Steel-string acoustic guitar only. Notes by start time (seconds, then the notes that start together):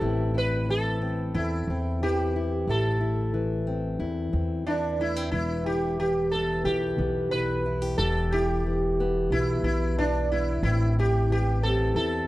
0.00 A2 E3 C4 E4
0.34 E4
0.69 E3
1.02 C4
1.34 E2 C4
1.70 C4
2.03 E3 E4
2.36 E4
2.68 A2 E4
3.01 E4
3.34 E3
3.67 C4
4.00 E2 E4
4.33 C4
4.67 E3 E4
5.00 A3
5.16 C4
5.32 E2 B3
5.66 E4
6.01 E3
6.35 B3
6.66 B2 E4
6.98 B3
7.32 E3 E4
7.66 E4
7.82 G4
7.98 E2 G4
8.34 E4
8.66 E3
9.00 B3
9.32 B2 B3
9.66 B3
9.98 E3 E4
10.32 B3
10.65 A2 C4
10.99 E4
11.30 E3
11.65 C4
11.96 E2 E4